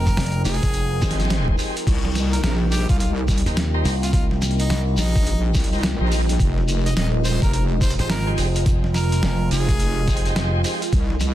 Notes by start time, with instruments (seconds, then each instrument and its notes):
Already playing: slap bass F1, analog synth pad F3 G#3 C4 D#4, ambient pad F4 A#4 D#5 G5, harmonica A#4
0.06 kick, closed hi-hat, shekere
0.17 slap bass F1, snare, closed hi-hat, shekere
0.20 closed hi-hat
0.23 closed hi-hat
0.26 closed hi-hat
0.32 closed hi-hat
0.45 wobble bass F1, harmonica G#4, open hi-hat, shekere
0.54 open hi-hat
0.63 slap bass F1, kick, closed hi-hat, open hi-hat, shekere
0.68 open hi-hat
0.74 closed hi-hat, shekere
1.02 wobble bass G#1, tonewheel organ D#4 G4 G#4 C5, kick, snare, closed hi-hat, shekere
1.11 snare, closed hi-hat
1.19 snare, closed hi-hat, shekere
1.25 snare
1.30 snare, closed hi-hat, shekere
1.48 kick
1.58 tonewheel organ D#4 G4 G#4 C5, open hi-hat, shekere
1.76 closed hi-hat, shekere
1.87 wobble bass C2, analog synth pad C3 G3 A#3, kick, closed hi-hat, crash, shekere
2.05 snare
2.15 snare, closed hi-hat, shekere
2.33 harmonica A#4, closed hi-hat, shekere
2.43 wobble bass A#1, harmonica A#4, snare, closed hi-hat, shekere
2.72 harmonica G4, open hi-hat, shekere
2.89 wobble bass C2, harmonica F4, kick, closed hi-hat, shekere
2.99 harmonica F4, closed hi-hat, shekere
3.28 kick, closed hi-hat, shekere
3.38 closed hi-hat
3.46 slap bass D#2, tonewheel organ D#4 G4 A#4 C5, snare, closed hi-hat, shekere
3.56 snare, closed hi-hat, shekere
3.74 tonewheel organ D#4 G4 A#4 C5
3.85 slap bass C2, open hi-hat, shekere
4.03 harmonica F4, closed hi-hat, shekere
4.13 harmonica F4, kick, closed hi-hat, shekere
4.31 snare
4.42 snare, closed hi-hat, shekere
4.51 closed hi-hat
4.59 harmonica D#4, closed hi-hat, shekere
4.65 closed hi-hat
4.70 slap bass C2, snare, closed hi-hat, shekere
4.97 wobble bass A#1, harmonica D#4, open hi-hat, shekere
5.16 kick, closed hi-hat, shekere
5.26 closed hi-hat, shekere
5.55 wobble bass C2, kick, snare, closed hi-hat, shekere
5.60 closed hi-hat
5.64 closed hi-hat
5.68 closed hi-hat
5.72 tonewheel organ D#4 G4 A#4 C5, closed hi-hat, shekere
5.76 closed hi-hat
5.78 closed hi-hat
5.81 snare, closed hi-hat, shekere
5.83 closed hi-hat
6.00 wobble bass A#1, tonewheel organ D#4 G4 A#4 C5
6.12 open hi-hat, shekere
6.29 closed hi-hat, shekere
6.39 wobble bass F1, analog synth pad F3 G#3 C4 D#4, kick, closed hi-hat, shekere
6.58 snare
6.68 closed hi-hat, shekere
6.86 harmonica D#5, closed hi-hat, shekere
6.97 wobble bass D#1, harmonica D#5, snare, closed hi-hat, shekere
7.24 harmonica C5, open hi-hat, shekere
7.42 wobble bass F1, harmonica A#4, kick, closed hi-hat, shekere
7.53 harmonica A#4, closed hi-hat, shekere
7.81 harmonica C5, kick, closed hi-hat, shekere
7.90 closed hi-hat
7.99 slap bass G#1, tonewheel organ D#4 G4 G#4 C5, harmonica C5, snare, closed hi-hat, shekere
8.10 harmonica A#4, snare, closed hi-hat, shekere
8.27 tonewheel organ D#4 G4 G#4 C5
8.38 slap bass F1, open hi-hat, shekere
8.55 closed hi-hat, shekere
8.66 analog synth pad F4, kick, closed hi-hat, shekere
8.84 snare
8.94 harmonica A#4, snare, closed hi-hat, shekere
8.98 closed hi-hat
9.01 closed hi-hat
9.04 closed hi-hat
9.09 closed hi-hat
9.12 closed hi-hat, shekere
9.23 slap bass F1, snare, closed hi-hat, shekere
9.51 wobble bass F1, harmonica G#4, open hi-hat, shekere
9.69 kick, closed hi-hat, shekere
9.80 closed hi-hat, shekere
10.08 slap bass F1, tonewheel organ D#4 G4 G#4 C5, kick, closed hi-hat, shekere
10.17 closed hi-hat
10.25 slap bass F1, closed hi-hat, shekere
10.36 snare, closed hi-hat, shekere
10.64 tonewheel organ D#4 G4 G#4 C5, open hi-hat, shekere
10.82 closed hi-hat, shekere
10.93 wobble bass C2, analog synth pad C3 G3 A#3 D#4, kick, closed hi-hat
11.10 snare
11.20 snare, closed hi-hat, shekere